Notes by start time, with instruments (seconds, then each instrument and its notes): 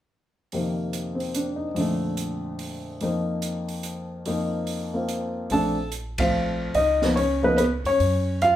0.52 upright piano F2 C3 D#3 A#3, open hi-hat
0.93 closed hi-hat
1.15 upright piano C4
1.20 open hi-hat
1.34 upright piano D4, closed hi-hat
1.56 upright piano D#4
1.75 upright piano F2 A#2 D3, open hi-hat
1.80 upright piano A3
2.17 closed hi-hat
2.59 open hi-hat
3.01 upright piano F2 F3 A#3 D#4, open hi-hat
3.42 closed hi-hat
3.69 open hi-hat
3.83 closed hi-hat
4.26 upright piano F2 F3 A#3 D#4, open hi-hat
4.67 open hi-hat
4.93 upright piano A#3 C4 F4
5.08 closed hi-hat
5.50 upright bass A#1, upright piano F3 A3 C4 D4 A4 A5, open hi-hat
5.92 closed hi-hat
6.18 upright piano F3 A3 C4 F4 F5, kick, ride
6.74 upright bass C#2, upright piano D#4 D#5, open hi-hat
7.02 upright piano F3 A#3 B3 D#4, snare
7.16 upright piano C#4 C#5, open hi-hat
7.42 upright piano F3 A#3 B3 D#4 B4
7.47 upright piano B3
7.58 upright piano B3 B4, closed hi-hat
7.84 upright bass F2, upright piano C#5, open hi-hat
7.89 upright piano C#4
8.00 upright bass F#2, open hi-hat
8.42 upright piano F4 F5, closed hi-hat